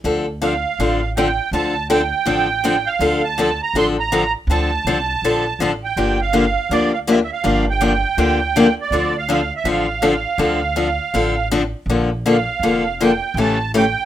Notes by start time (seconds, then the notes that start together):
0.04 D2 D3 F3 C4 D4 A4
0.42 D3 F3 C4 D4 A4 F5
0.79 A1 D3 F3 C4 D4 A4
1.17 D3 F3 C4 D4 A4 G5
1.51 D2 D3 F3 C4 D4 A4 A5
1.90 D3 F3 C4 D4 A4 G5
2.25 A1 D3 F3 C4 D4 A4
2.64 D3 F3 C4 D4 A4
2.87 F5
2.99 D2 D3 F3 C4 D4 A4
3.24 A5
3.38 D3 F3 C4 D4 A4
3.63 A#5
3.74 A1 D3 F3 C4 D4 A4
3.78 C6
4.00 A#5
4.12 D3 F3 C4 D4 A4
4.47 D2 D3 F3 C4 D4 A5
4.51 A4
4.85 C2 D3 F3 C4 D4 A4
5.22 A#1 D3 F3 C4 D4 A4
5.59 A1 D3 F3 C4 D4 A4 A5
5.84 G5
5.96 G1 D3 F3 A#3 D4 G4
6.21 F5
6.33 D3 F3 A#3 D4 G4
6.69 D2 D3 F3 A#3 D4 G4 D5
6.93 F5
7.07 D3 F3 A#3 D4 G4 E5
7.24 E5
7.32 F5
7.44 G1 D3 F3 A#3 D4 G4
7.70 G5
7.81 D3 F3 A#3 D4 G4
8.17 D2 D3 F3 A#3 D4 G4
8.56 D3 F3 A#3 D4 G4
8.82 D5
8.90 D2 D3 F3 C4 D4 A4
9.18 F5
9.29 D3 F3 C4 D4 A4
9.56 E5
9.64 A1 D3 F3 C4 D4 A4
9.71 F5
10.02 D3 F3 C4 D4 A4
10.38 D2 D3 F3 C4 D4 A4
10.76 D3 F3 C4 D4 A4
11.14 A1 D3 F3 C4 D4 A4
11.51 D3 F3 C4 D4 A4
11.86 A#1 D3 F3 D4
11.90 A#3 A4
12.26 D3 F3 A#3 D4 A4 F5
12.59 F1 D3 F3 A#3
12.63 D4 A4
13.01 D3 F3 A#3 D4 A4 G5
13.34 A1 C#3 E3 A3 C#4
13.38 G4 A5
13.74 C#3 E3 A3 C#4 G4 G5